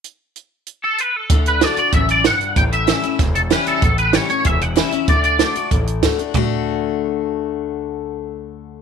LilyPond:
<<
  \new Staff \with { instrumentName = "Clean electric guitar" } { \time 4/4 \key d \major \tempo 4 = 190 r2 r8 a'8 b'8 a'8~ | a'8 b'8 d''8 d''8 e''8 d''8 fis''4 | g''8 e''4. r8 a'8 b'8 a'8~ | a'8 b'8 cis''8 cis''8 e''8 fis''8 e''4 |
d''8 d''4. r2 | r1 | r1 | }
  \new Staff \with { instrumentName = "Steel-string acoustic guitar" } { \time 4/4 \key d \major << { r1 | r4 <d a d' fis'>8 <d' fis'>8 r2 | r4 <e g cis' e'>8 <cis' e'>8 r4 <e g cis' e'>4 | r4 <e g cis' e'>8 <cis' e'>8 r4 <e g cis' e'>8 <cis' e'>8 |
r4 <d a d' fis'>8 <d' fis'>8 r4 <d a d' fis'>8 <d' fis'>8 | <d a d' fis'>1~ | <d a d' fis'>1 | } \\ { r1 | d2 fis,4 g,4 | a,2 e,2 | a,2 e,2 |
d2 a,2 | r1 | r1 | } >> }
  \new Staff \with { instrumentName = "Upright bass" } { \clef bass \time 4/4 \key d \major r1 | d,4. r8 a,,4. r8 | a,,4. r8 e,,4. r8 | a,,4. r8 e,,4. r8 |
d,4. r8 a,,4. r8 | d,1~ | d,1 | }
  \new DrumStaff \with { instrumentName = "Drums" } \drummode { \time 4/4 hh4 hh4 hh4 hh4 | <hh bd>8 hh8 <hh sn>8 hh8 <hh bd>8 hh8 <hh sn>8 hh8 | <hh bd>8 hh8 <hh sn>8 hh8 <hh bd sn>8 hh8 <hh sn>8 hh8 | <hh bd>8 hh8 <hh sn>8 hh8 <hh bd>8 hh8 <hh sn>8 hh8 |
<hh bd>8 hh8 <hh sn>8 hh8 <hh bd>8 hh8 <hh bd sn>8 hh8 | <bd tomfh>4 r4 r4 r4 | r4 r4 r4 r4 | }
>>